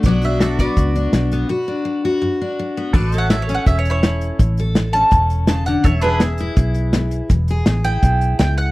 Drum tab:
CC |--------|--------|x-------|--------|
HH |xxxxxxxx|--------|-xxxxxxx|xxxxxxxx|
SD |--o---o-|--------|--o---o-|--o---o-|
BD |o--oo---|--------|o---o---|o---o---|

CC |--------|--------|
HH |xxxxxxxx|xxxxxxxx|
SD |--o---o-|--o---o-|
BD |o---o---|o---o---|